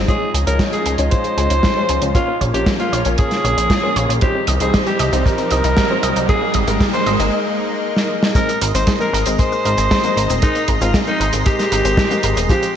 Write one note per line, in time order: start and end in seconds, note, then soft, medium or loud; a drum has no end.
0.08 4.18 F3 medium
0.08 0.18 F3 loud
0.08 0.23 G#3 medium
0.08 2.13 C#4 medium
0.08 0.23 D#4 medium
0.08 2.13 D#4 medium
0.08 0.23 F4 medium
0.08 0.32 G#4 loud
0.08 0.23 C#5 loud
0.08 kick loud
0.08 closed hi-hat medium
0.08 riser medium
0.21 0.31 G#3 medium
0.34 0.45 C#2 medium
0.34 0.40 G#4 loud
0.34 closed hi-hat medium
0.47 0.58 C#2 medium
0.47 0.96 G#3 medium
0.47 0.59 C#4 loud
0.47 0.96 D#4 medium
0.47 0.96 F4 medium
0.47 0.63 A#4 medium
0.47 0.96 C#5 medium
0.47 closed hi-hat medium
0.59 0.70 F3 medium
0.59 kick loud
0.59 snare loud
0.59 closed hi-hat medium
0.73 0.83 G#3 medium
0.73 0.97 G#4 medium
0.73 closed hi-hat medium
0.86 0.97 C#2 medium
0.86 0.92 G#4 loud
0.86 closed hi-hat medium
0.98 1.10 C#2 medium
0.98 1.34 G#3 medium
0.98 1.11 C#4 loud
0.98 1.34 D#4 medium
0.98 1.34 F4 medium
0.98 1.34 C#5 medium
0.98 closed hi-hat medium
1.11 1.21 F3 loud
1.11 2.05 C5 loud
1.11 kick loud
1.11 closed hi-hat medium
1.24 1.34 G#3 medium
1.24 closed hi-hat medium
1.37 1.48 C#2 medium
1.37 1.73 G#3 medium
1.37 1.73 C#4 medium
1.37 1.73 D#4 medium
1.37 1.73 F4 medium
1.37 1.43 G#4 loud
1.37 closed hi-hat medium
1.50 1.61 C#2 medium
1.50 1.63 C#4 loud
1.50 closed hi-hat medium
1.63 1.73 F3 loud
1.63 kick loud
1.63 snare loud
1.63 closed hi-hat medium
1.76 2.12 G#3 medium
1.76 1.86 G#3 medium
1.76 2.12 D#4 medium
1.76 2.12 F4 medium
1.76 2.12 C#5 medium
1.89 2.00 C#2 medium
1.89 1.95 G#4 loud
1.89 closed hi-hat medium
2.02 2.13 C#2 medium
2.02 2.14 C#4 loud
2.02 closed hi-hat medium
2.15 2.25 F3 loud
2.15 2.30 A#3 loud
2.15 4.20 A#3 medium
2.15 2.30 C#4 medium
2.15 4.20 C#4 medium
2.15 2.39 F4 loud
2.15 2.30 F4 medium
2.15 2.30 C#5 loud
2.15 kick loud
2.15 closed hi-hat medium
2.28 2.38 A#3 medium
2.41 2.52 A#1 medium
2.41 2.47 C#5 loud
2.41 kick medium
2.41 closed hi-hat medium
2.54 2.65 A#1 medium
2.54 3.03 A#3 medium
2.54 3.03 C#4 medium
2.54 2.66 C#4 loud
2.54 3.03 F4 medium
2.54 2.70 G4 medium
2.54 3.03 C#5 medium
2.54 closed hi-hat medium
2.66 2.77 F3 loud
2.66 kick loud
2.66 snare loud
2.66 closed hi-hat medium
2.80 2.90 A#3 medium
2.80 3.04 F4 medium
2.80 closed hi-hat soft
2.93 3.04 A#1 medium
2.93 2.99 C#5 loud
2.93 closed hi-hat medium
3.05 3.16 A#1 medium
3.05 3.41 A#3 medium
3.05 3.41 C#4 medium
3.05 3.18 C#4 loud
3.05 3.41 F4 medium
3.05 3.41 C#5 medium
3.05 closed hi-hat medium
3.18 3.28 F3 loud
3.18 4.12 G#4 loud
3.18 kick loud
3.18 closed hi-hat medium
3.31 3.41 A#3 medium
3.31 snare soft
3.31 closed hi-hat medium
3.44 3.55 A#1 medium
3.44 3.80 A#3 medium
3.44 3.80 C#4 medium
3.44 3.80 F4 medium
3.44 3.50 C#5 medium
3.44 3.80 C#5 medium
3.44 closed hi-hat medium
3.57 3.68 A#1 medium
3.57 3.70 C#4 loud
3.57 closed hi-hat medium
3.70 3.80 F3 loud
3.70 kick loud
3.70 snare loud
3.70 closed hi-hat medium
3.83 4.19 A#3 medium
3.83 3.93 A#3 medium
3.83 4.19 C#4 medium
3.83 4.19 F4 medium
3.83 4.19 C#5 loud
3.96 4.07 A#1 medium
3.96 4.02 C#5 loud
3.96 closed hi-hat medium
4.09 4.20 A#1 medium
4.09 4.21 C#4 loud
4.09 closed hi-hat medium
4.21 4.37 G3 loud
4.21 4.32 G3 loud
4.21 6.27 G3 medium
4.21 4.37 C4 medium
4.21 6.27 C4 medium
4.21 4.37 D#4 medium
4.21 6.27 D#4 medium
4.21 4.46 G4 loud
4.21 4.37 C5 loud
4.21 kick loud
4.21 closed hi-hat medium
4.35 4.45 C4 medium
4.47 4.59 C2 medium
4.47 4.54 D#5 loud
4.47 closed hi-hat loud
4.60 4.72 C2 medium
4.60 5.09 G3 medium
4.60 5.09 C4 medium
4.60 5.09 D#4 medium
4.60 4.73 D#4 loud
4.60 4.77 G#4 medium
4.60 5.09 C5 medium
4.60 closed hi-hat medium
4.74 4.84 G3 loud
4.74 kick loud
4.74 snare loud
4.74 closed hi-hat medium
4.87 4.96 C4 medium
4.87 5.11 G4 medium
4.87 closed hi-hat soft
4.99 5.10 C2 medium
4.99 5.05 D#5 loud
4.99 closed hi-hat medium
5.12 5.23 C2 medium
5.12 5.48 G3 medium
5.12 5.48 C4 medium
5.12 5.48 D#4 medium
5.12 5.25 D#4 loud
5.12 5.48 C5 medium
5.12 closed hi-hat medium
5.25 5.35 G3 loud
5.25 6.19 A#4 loud
5.25 kick loud
5.25 closed hi-hat medium
5.38 5.48 C4 medium
5.38 closed hi-hat medium
5.51 5.62 C2 medium
5.51 5.87 G3 medium
5.51 5.87 C4 medium
5.51 5.87 D#4 medium
5.51 5.87 C5 medium
5.51 5.57 D#5 medium
5.51 closed hi-hat medium
5.64 5.75 C2 medium
5.64 5.77 D#4 loud
5.64 closed hi-hat medium
5.77 5.87 G3 loud
5.77 kick loud
5.77 snare loud
5.77 closed hi-hat medium
5.90 6.26 G3 medium
5.90 6.00 C4 medium
5.90 6.26 C4 medium
5.90 6.26 D#4 medium
5.90 6.26 C5 loud
6.03 6.14 C2 medium
6.03 6.09 D#5 loud
6.03 closed hi-hat medium
6.16 6.27 C2 medium
6.16 6.28 D#4 loud
6.16 closed hi-hat medium
6.29 6.43 G#3 loud
6.29 8.34 G#3 medium
6.29 6.39 G#3 loud
6.29 6.43 A#3 medium
6.29 8.34 A#3 medium
6.29 8.34 D#4 medium
6.29 6.43 D#4 medium
6.29 6.53 G#4 loud
6.29 6.43 A#4 loud
6.29 kick loud
6.29 closed hi-hat medium
6.42 6.52 A#3 medium
6.54 6.66 G#1 medium
6.54 6.61 D#5 loud
6.54 kick medium
6.54 closed hi-hat medium
6.67 6.78 G#1 medium
6.67 7.16 G#3 medium
6.67 7.16 A#3 medium
6.67 6.80 D#4 loud
6.67 7.16 D#4 medium
6.67 7.16 A#4 medium
6.67 6.84 A#4 medium
6.67 closed hi-hat medium
6.80 6.90 G#3 loud
6.80 kick loud
6.80 snare loud
6.80 closed hi-hat medium
6.93 7.03 A#3 medium
6.93 7.18 C5 medium
6.93 closed hi-hat soft
7.06 7.17 G#1 medium
7.06 7.12 D#5 loud
7.06 closed hi-hat medium
7.19 7.30 G#1 medium
7.19 7.32 G#3 medium
7.19 7.32 A#3 medium
7.19 7.32 D#4 medium
7.19 7.32 D#4 loud
7.19 7.32 A#4 medium
7.19 closed hi-hat medium
7.97 snare medium
8.23 snare medium
8.35 8.50 G#3 loud
8.35 12.76 G#3 medium
8.35 8.46 G#3 loud
8.35 8.50 C4 medium
8.35 8.50 D#4 medium
8.35 8.60 A#4 loud
8.35 8.50 A#4 loud
8.35 12.46 D#5 medium
8.35 12.46 A#5 medium
8.35 12.76 C6 medium
8.35 kick loud
8.35 closed hi-hat medium
8.35 cabasa medium
8.49 8.59 A#3 medium
8.49 closed hi-hat medium
8.49 cabasa soft
8.61 8.73 G#1 medium
8.61 8.68 A#4 loud
8.61 closed hi-hat loud
8.74 8.85 G#1 medium
8.74 9.23 G#3 medium
8.74 9.23 C4 medium
8.74 8.87 C4 loud
8.74 9.23 D#4 medium
8.74 9.23 A#4 medium
8.74 8.91 C5 medium
8.74 closed hi-hat medium
8.74 cabasa medium
8.87 8.97 G#3 loud
8.87 kick loud
8.87 snare loud
8.87 closed hi-hat medium
8.87 cabasa medium
9.00 9.10 A#3 medium
9.00 9.25 A#4 medium
9.00 cabasa medium
9.13 9.24 G#1 loud
9.13 9.19 A#4 loud
9.13 closed hi-hat medium
9.26 9.37 G#1 medium
9.26 9.62 G#3 medium
9.26 9.39 C4 loud
9.26 9.62 C4 medium
9.26 9.62 D#4 medium
9.26 9.62 A#4 medium
9.26 closed hi-hat medium
9.26 cabasa medium
9.39 9.49 G#3 loud
9.39 10.32 C5 loud
9.39 kick loud
9.39 closed hi-hat medium
9.39 cabasa medium
9.52 9.62 A#3 medium
9.52 cabasa medium
9.65 9.76 G#1 medium
9.65 10.01 G#3 medium
9.65 10.01 C4 medium
9.65 10.01 D#4 medium
9.65 10.01 A#4 medium
9.65 9.71 A#4 loud
9.65 closed hi-hat medium
9.78 9.89 G#1 medium
9.78 9.90 C4 loud
9.78 closed hi-hat medium
9.78 cabasa medium
9.91 10.01 G#3 loud
9.91 kick loud
9.91 snare loud
9.91 closed hi-hat medium
9.91 cabasa medium
10.03 10.40 G#3 medium
10.03 10.14 A#3 medium
10.03 10.40 C4 medium
10.03 10.40 D#4 medium
10.03 10.40 A#4 loud
10.03 closed hi-hat medium
10.03 cabasa soft
10.17 10.28 G#1 loud
10.17 10.23 A#4 loud
10.17 closed hi-hat medium
10.30 10.41 D#1 medium
10.30 10.42 C4 loud
10.30 closed hi-hat medium
10.30 cabasa medium
10.42 10.57 G#3 loud
10.42 10.53 G#3 loud
10.42 10.57 C4 medium
10.42 10.67 D#4 loud
10.42 10.57 D#4 medium
10.42 10.57 A#4 loud
10.42 kick loud
10.42 closed hi-hat medium
10.42 cabasa medium
10.55 10.65 A#3 medium
10.55 closed hi-hat soft
10.55 cabasa soft
10.68 10.79 G#1 medium
10.68 10.74 A#4 loud
10.68 kick medium
10.68 closed hi-hat medium
10.81 10.92 G#1 medium
10.81 11.30 G#3 medium
10.81 10.94 C4 loud
10.81 11.30 C4 medium
10.81 11.30 D#4 medium
10.81 10.98 F4 medium
10.81 11.30 A#4 medium
10.81 closed hi-hat medium
10.81 cabasa medium
10.94 11.04 G#3 loud
10.94 kick loud
10.94 snare loud
10.94 closed hi-hat medium
10.94 cabasa medium
11.07 11.17 A#3 medium
11.07 11.32 D#4 medium
11.07 cabasa soft
11.20 11.31 G#1 medium
11.20 11.26 A#4 loud
11.20 closed hi-hat medium
11.33 11.44 G#1 medium
11.33 11.69 G#3 medium
11.33 11.45 C4 loud
11.33 11.69 C4 medium
11.33 11.69 D#4 medium
11.33 11.69 A#4 medium
11.33 closed hi-hat medium
11.33 cabasa medium
11.46 11.56 G#3 loud
11.46 12.39 G4 loud
11.46 kick loud
11.46 closed hi-hat medium
11.46 cabasa medium
11.59 11.69 A#3 medium
11.59 snare soft
11.59 closed hi-hat medium
11.59 cabasa soft
11.72 11.83 G#1 medium
11.72 12.08 G#3 medium
11.72 12.08 C4 medium
11.72 12.08 D#4 medium
11.72 12.08 A#4 medium
11.72 11.78 A#4 loud
11.72 closed hi-hat medium
11.85 11.96 G#1 medium
11.85 11.97 C4 loud
11.85 closed hi-hat medium
11.85 cabasa medium
11.97 12.08 G#3 loud
11.97 kick loud
11.97 snare loud
11.97 closed hi-hat medium
11.97 cabasa medium
12.11 12.46 G#3 medium
12.11 12.21 A#3 medium
12.11 12.46 C4 medium
12.11 12.46 D#4 medium
12.11 12.46 A#4 loud
12.11 closed hi-hat medium
12.11 cabasa soft
12.23 12.35 G#1 medium
12.23 12.30 A#4 loud
12.23 closed hi-hat medium
12.37 12.48 D#1 medium
12.37 12.49 C4 loud
12.37 closed hi-hat medium
12.37 cabasa medium
12.49 12.64 F3 loud
12.49 12.59 F3 loud
12.49 12.64 G#3 medium
12.49 12.64 C4 medium
12.49 12.64 G4 loud
12.49 12.74 G4 loud
12.49 12.76 F5 medium
12.49 12.76 G5 medium
12.49 kick loud
12.49 closed hi-hat medium
12.49 cabasa medium
12.62 12.72 G3 medium
12.62 closed hi-hat medium
12.62 cabasa soft